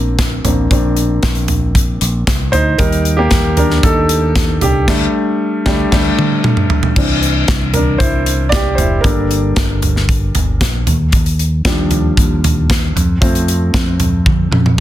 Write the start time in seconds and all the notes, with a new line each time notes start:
Already playing: A#1 A#3 C4 D4
0.19 kick, snare, closed hi-hat
0.45 A1 A#3 C4 D4, closed hi-hat, floor tom
0.71 A#1 A#3 C4 D4, kick, closed hi-hat
0.97 closed hi-hat
1.23 kick, snare, closed hi-hat
1.35 closed hi-hat
1.48 closed hi-hat, floor tom
1.75 kick, closed hi-hat
2.01 A#1, closed hi-hat
2.27 kick, snare, closed hi-hat
2.52 D2 D#4 C5, closed hi-hat, floor tom
2.78 D#2 G3 A#3 D#4 A#4, kick, closed hi-hat
2.92 closed hi-hat
3.05 closed hi-hat
3.17 A#3 G4
3.31 D#2, kick, snare, closed hi-hat
3.57 D4 A#4, closed hi-hat, floor tom
3.70 snare
3.83 D#2 D#4 A4, kick, closed hi-hat
4.09 closed hi-hat
4.35 kick, snare, closed hi-hat
4.61 C2 D4 G4, closed hi-hat, floor tom
4.88 D2 G3 A3 D4, kick, snare, crash
5.66 D2 G3 A3 D4, kick, snare
5.92 D2 G3 A3 D4, kick, snare, crash
6.19 high tom
6.44 mid tom
6.57 mid tom
6.70 floor tom
6.83 floor tom
6.96 C2 E3 C4 D4, kick, crash
7.23 closed hi-hat
7.48 C2, kick, snare, closed hi-hat
7.73 D4 A#4, closed hi-hat, floor tom
7.98 C2 E4 C5, kick, closed hi-hat
8.26 closed hi-hat
8.49 D5, kick, snare, closed hi-hat
8.54 G4
8.75 F1 C5, closed hi-hat, floor tom
8.80 E4
9.01 G1 G3 A#3 A4 A#4, kick, closed hi-hat
9.05 D4
9.31 closed hi-hat
9.56 kick, snare, closed hi-hat
9.82 closed hi-hat, floor tom
9.96 snare
10.09 kick, closed hi-hat
10.35 G1, closed hi-hat, floor tom
10.61 A#1, kick, snare, closed hi-hat
10.87 D#2, closed hi-hat, floor tom
11.12 kick, closed hi-hat
11.26 closed hi-hat
11.39 closed hi-hat
11.65 D#2 F3 G3 D4, kick, snare, closed hi-hat
11.91 closed hi-hat, floor tom
12.17 D#2, kick, closed hi-hat
12.44 closed hi-hat, floor tom
12.70 kick, snare, closed hi-hat
12.96 F2, closed hi-hat, floor tom
13.21 F2 F3 A3 C4, kick, closed hi-hat
13.35 closed hi-hat
13.48 closed hi-hat
13.73 F2, kick, snare, closed hi-hat
14.00 closed hi-hat, floor tom
14.26 kick, high tom
14.51 F2, mid tom
14.66 mid tom